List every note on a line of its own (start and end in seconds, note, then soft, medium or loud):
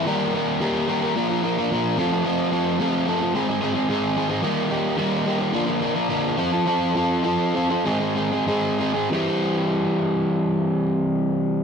0.06 0.59 D#3 medium
0.06 0.33 G3 medium
0.06 0.32 A#3 medium
0.06 0.33 G4 loud
0.06 0.34 A#4 medium
0.33 0.60 G3 medium
0.33 0.60 A#3 medium
0.33 0.60 G4 medium
0.33 0.61 A#4 medium
0.60 1.13 D#3 medium
0.60 0.87 G3 medium
0.60 0.86 A#3 medium
0.60 0.88 G4 medium
0.60 0.88 A#4 medium
0.87 1.03 G3 medium
0.87 1.13 A#3 medium
0.87 1.02 G4 medium
0.87 1.00 A#4 medium
1.02 1.15 G3 medium
1.02 1.14 G4 medium
1.02 1.13 A#4 medium
1.15 1.56 A#2 medium
1.15 1.56 F3 medium
1.15 1.29 A#3 loud
1.15 1.29 D4 medium
1.15 1.29 F4 medium
1.15 1.28 A#4 loud
1.29 1.41 A#3 medium
1.29 1.42 D4 medium
1.29 1.42 F4 medium
1.29 1.43 A#4 medium
1.42 1.58 A#3 medium
1.42 1.58 D4 medium
1.42 1.57 F4 medium
1.42 1.56 A#4 medium
1.58 1.70 A#3 soft
1.58 1.70 D4 soft
1.58 1.70 F4 medium
1.58 1.71 A#4 medium
1.70 1.96 A#2 medium
1.70 1.96 F3 medium
1.70 1.96 A#3 medium
1.70 1.96 D4 medium
1.70 1.96 F4 medium
1.70 1.97 A#4 medium
1.97 2.23 F3 medium
1.97 2.23 A3 medium
1.97 2.12 C4 medium
1.97 2.12 F4 medium
1.97 2.11 A4 loud
2.12 2.24 C4 medium
2.12 2.25 F4 medium
2.12 2.25 A4 medium
2.24 2.77 F3 medium
2.24 2.50 A3 medium
2.24 2.50 C4 loud
2.24 2.51 F4 loud
2.24 2.51 A4 medium
2.51 2.78 A3 medium
2.51 2.79 C4 medium
2.51 2.79 F4 medium
2.51 2.79 A4 medium
2.79 3.32 F3 medium
2.79 3.05 A3 medium
2.79 3.06 C4 medium
2.79 3.07 F4 medium
2.79 3.07 A4 medium
3.06 3.32 A3 medium
3.06 3.21 C4 medium
3.06 3.21 F4 medium
3.06 3.19 A4 medium
3.21 3.33 C4 soft
3.21 3.33 F4 medium
3.21 3.32 A4 medium
3.34 3.75 G#2 medium
3.34 3.75 D#3 medium
3.34 3.48 G#3 medium
3.34 3.48 C4 medium
3.34 3.47 D#4 medium
3.34 3.47 G#4 medium
3.48 3.60 G#3 soft
3.48 3.60 C4 medium
3.48 3.60 D#4 medium
3.48 3.61 G#4 medium
3.61 3.74 G#3 medium
3.61 3.74 C4 medium
3.61 3.73 D#4 medium
3.61 3.72 G#4 medium
3.74 3.88 G#3 medium
3.74 3.89 C4 medium
3.74 3.89 D#4 medium
3.74 3.89 G#4 medium
3.88 4.42 G#2 medium
3.88 4.41 D#3 medium
3.88 4.15 G#3 medium
3.88 4.16 C4 medium
3.88 4.16 D#4 medium
3.88 4.16 G#4 medium
4.17 4.30 G#3 medium
4.17 4.29 C4 medium
4.17 4.28 D#4 medium
4.17 4.28 G#4 medium
4.29 4.42 G#3 medium
4.29 4.42 C4 medium
4.29 4.42 D#4 medium
4.29 4.41 G#4 medium
4.42 4.96 D#3 medium
4.42 4.68 G3 medium
4.42 4.69 A#3 medium
4.42 4.69 D#4 medium
4.42 4.70 G4 medium
4.69 4.97 G3 medium
4.69 4.97 A#3 medium
4.69 4.97 D#4 medium
4.69 4.97 G4 medium
4.97 5.51 D#3 medium
4.97 5.25 G3 medium
4.97 5.26 A#3 medium
4.97 5.26 D#4 medium
4.97 5.27 G4 medium
5.26 5.52 G3 medium
5.26 5.40 A#3 medium
5.26 5.38 D#4 medium
5.26 5.37 G4 medium
5.39 5.52 A#3 soft
5.39 5.52 D#4 medium
5.39 5.51 G4 medium
5.53 5.95 A#2 medium
5.53 5.95 D3 medium
5.53 5.67 F3 medium
5.53 5.66 A#3 medium
5.53 5.66 D4 medium
5.53 5.65 A#4 medium
5.66 5.79 F3 soft
5.66 5.80 A#3 medium
5.66 5.80 D4 medium
5.66 5.81 A#4 medium
5.80 5.95 F3 medium
5.80 5.94 A#3 medium
5.80 5.94 D4 medium
5.80 5.93 A#4 medium
5.94 6.08 F3 soft
5.94 6.09 A#3 soft
5.94 6.09 D4 medium
5.94 6.09 A#4 medium
6.09 6.36 A#2 medium
6.09 6.36 D3 medium
6.09 6.36 F3 medium
6.09 6.37 A#3 medium
6.09 6.37 D4 medium
6.09 6.37 A#4 medium
6.37 6.65 F3 medium
6.37 6.52 C4 loud
6.37 6.51 F4 medium
6.37 6.51 A4 medium
6.52 6.66 C4 medium
6.52 6.66 F4 soft
6.52 6.67 A4 medium
6.66 6.94 F3 medium
6.66 6.94 C4 medium
6.66 6.95 F4 medium
6.66 6.96 A4 medium
6.95 7.23 F3 medium
6.95 7.23 C4 medium
6.95 7.24 F4 medium
6.95 7.24 A4 medium
7.24 7.53 F3 medium
7.24 7.54 C4 medium
7.24 7.55 F4 medium
7.24 7.55 A4 medium
7.55 7.83 F3 medium
7.55 7.70 C4 medium
7.55 7.70 F4 medium
7.55 7.69 A4 medium
7.70 7.84 C4 soft
7.70 7.84 F4 medium
7.70 7.83 A4 medium
7.84 8.31 G#2 medium
7.84 8.31 D#3 medium
7.84 8.00 G#3 medium
7.84 8.00 C4 medium
7.84 7.99 D#4 medium
7.84 7.98 G#4 medium
8.00 8.14 G#3 soft
8.00 8.15 C4 soft
8.00 8.15 D#4 medium
8.00 8.16 G#4 medium
8.15 8.33 G#3 medium
8.15 8.32 C4 medium
8.15 8.32 D#4 medium
8.15 8.30 G#4 medium
8.32 8.46 G#3 soft
8.32 8.46 C4 soft
8.32 8.46 D#4 soft
8.32 8.47 G#4 medium
8.46 9.08 G#2 medium
8.46 9.08 D#3 medium
8.46 8.78 G#3 medium
8.46 8.78 C4 medium
8.46 8.79 D#4 medium
8.46 8.79 G#4 medium
8.79 8.94 G#3 medium
8.79 8.93 C4 medium
8.79 8.93 D#4 medium
8.79 8.92 G#4 medium
8.93 9.09 G#3 soft
8.93 9.09 C4 soft
8.93 9.08 D#4 medium
8.93 9.08 G#4 medium
9.10 11.64 C3 medium
9.10 11.64 E3 medium
9.10 11.64 G3 medium
9.10 11.64 C4 medium
9.10 11.64 G4 medium